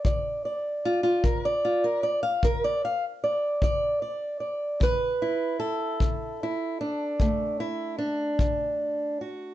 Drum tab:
BD |o--o--o--o--|o--o--o--o--|